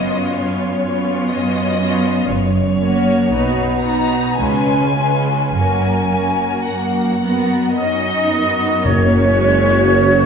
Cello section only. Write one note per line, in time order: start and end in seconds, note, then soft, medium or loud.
0.00 0.27 F#2 soft
0.39 1.23 F#2 soft
1.33 2.18 F#2 soft
2.29 3.19 F#2 medium
3.32 4.27 B2 soft
4.40 5.39 C#3 soft
5.52 6.52 F#2 soft
6.67 7.64 F#2 soft
7.78 8.74 F#2 soft
7.78 8.83 D#4 medium
8.87 10.26 C#4 medium